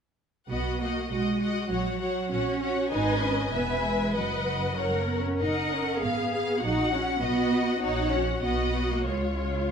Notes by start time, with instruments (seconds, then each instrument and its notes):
0.49 double bass section B1, cello section B3, viola section F#4, violin section D#5 F#5
0.80 cello section A#3, viola section F#4, violin section D#5 F#5
1.10 double bass section B1, cello section G#3, viola section F#4, violin section D#5 F#5
1.41 viola section F#4, violin section D#5 F#5
1.70 double bass section A#1, cello section F#3, viola section F#4, violin section C#5 F#5
2.01 viola section F#4, violin section C#5 F#5
2.31 double bass section A#1, cello section C#4, viola section F#4, violin section C#5 F#5
2.62 viola section F#4, violin section C#5 F#5
2.92 double bass section G#1, cello section D#4, viola section B4, violin section D#5 G#5
3.22 cello section C#4
3.52 double bass section E1, cello section B3, viola section B4, violin section E5 G#5
3.83 cello section G#3
4.14 double bass section F#1, cello section F#3, viola section B4, violin section D#5 F#5
4.77 double bass section F#1, viola section A#4, violin section C#5 F#5
4.93 cello section A#3
5.08 cello section B3
5.25 cello section C#4
5.39 double bass section F#1, cello section D#4, viola section A#4, violin section D#5 F#5
5.71 cello section C#4
6.01 double bass section G#1, cello section B3, viola section G#4, violin section F5
6.33 violin section F5
6.62 double bass section A#1, cello section D#4, viola section F#4, violin section F#5
6.93 cello section C#4
7.22 double bass section B1, cello section B3, viola section F#4, violin section D#5 F#5
7.82 double bass section A#1, cello section D#4, viola section F#4, violin section C#5 F#5
8.12 cello section C#4
8.43 double bass section B1, cello section B3, viola section F#4, violin section D#5 F#5
8.92 cello section A#3
9.07 double bass section C#2, cello section G#3, viola section F4, violin section C#5